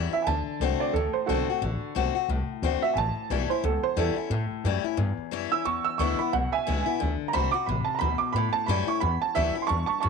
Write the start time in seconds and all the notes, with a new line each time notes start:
Already playing: E2 E3 G3 C#4 E4
0.12 C#4 E4 E5, muted upright bass stroke
0.22 G#5
0.27 D2 D3 A5
0.47 muted upright bass stroke
0.60 C2 D3 A3 C4 F#4
0.80 D5, muted upright bass stroke
0.93 D2 A2 A4
1.13 C5, muted upright bass stroke
1.26 B1 D3 A3 C4 F#4 A4
1.48 C4 F#4, muted upright bass stroke
1.61 A1 D3
1.81 muted upright bass stroke
1.95 B1 D3 A3 C4 F#4
2.15 C4 F#4, muted upright bass stroke
2.28 C2 A2
2.48 muted upright bass stroke
2.62 D2 D3 A3 C4 F#4
2.82 C4 F#4 E5, muted upright bass stroke
2.94 A1 A2 G#5
2.98 A5
3.16 muted upright bass stroke
3.30 B1 E3 G3 C#4 E4
3.50 C#4 E4 C5, muted upright bass stroke
3.63 C#2 E2 A4
3.83 C5, muted upright bass stroke
3.97 E2 E3 G3 C#4 E4 A4
4.15 C#4 E4, muted upright bass stroke
4.30 A2
4.51 muted upright bass stroke
4.64 F#2 E3 G3 C#4 E4
4.84 C#4 E4, muted upright bass stroke
4.97 E2 G2
5.17 muted upright bass stroke
5.31 F#2 E3 G3 C#4 E4
5.52 C#4 E4 E6, muted upright bass stroke
5.65 E2 C#6
5.84 E6, muted upright bass stroke
5.98 D2 D3 G#3 B3 E4 C#6
6.19 B3 E4 B5, muted upright bass stroke
6.33 B1 B2 F#5
6.52 E5 G#5, muted upright bass stroke
6.67 C#2 D3 G#3 B3 E4
6.86 B3 E4, muted upright bass stroke
7.00 D2 D3
7.21 muted upright bass stroke
7.28 A#5
7.33 C2 D3 A3 C4 F#4 B5
7.51 C4 F#4 D6, muted upright bass stroke
7.66 A1 C3 B5
7.85 A5, muted upright bass stroke
7.95 A#5
7.99 D2 B2 B5
8.18 D6, muted upright bass stroke
8.33 A2 B5
8.53 A5, muted upright bass stroke
8.66 F#2 E3 G3 C#4 E4 B5
8.87 C#4 E4 C#6, muted upright bass stroke
9.00 E2 B5
9.22 A5, muted upright bass stroke
9.35 D2 E3 G3 C#4 E4 E5
9.55 C#4 E4, muted upright bass stroke
9.62 C6
9.67 E2 G2 A5 C#6
9.86 A5 C#6, muted upright bass stroke
10.00 F#2 A5 C#6
10.04 F#2